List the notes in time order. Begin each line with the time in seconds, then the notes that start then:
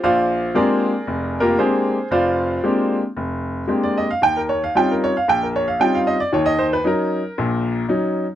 0.04 A#1 F4 C5 D5 F5
0.55 G#3 A#3 C4 D4 G4 G#4 A#4 D5
1.07 F1
1.40 A#3 F4 G4 A#4
1.58 G#3 A#3 C4 D4 G4 G#4 C5
2.11 F1 F4 C5 D5 F5
2.64 G#3 A#3 C4 D4 G4
3.17 F1
3.67 G#3 A#3 C4 D4 G4
3.83 D5
3.97 D#5
4.11 F5
4.22 D#2 G5
4.37 A#4
4.49 C#5
4.64 F5
4.75 G3 C4 C#4 D#4 F4 G5
4.92 A#4
5.04 C#5
5.17 F5
5.28 A#1 G5
5.43 A#4
5.56 C#5
5.68 F5
5.79 G3 C4 C#4 D#4 F4 G5
5.95 F5
6.07 D#5
6.20 D5
6.32 D#2 D#3 C#5
6.46 D#5
6.59 C5
6.73 B4
6.84 F#3 C#4 D#4 A#4
7.38 A#1 A#2
7.89 F#3 C#4 D#4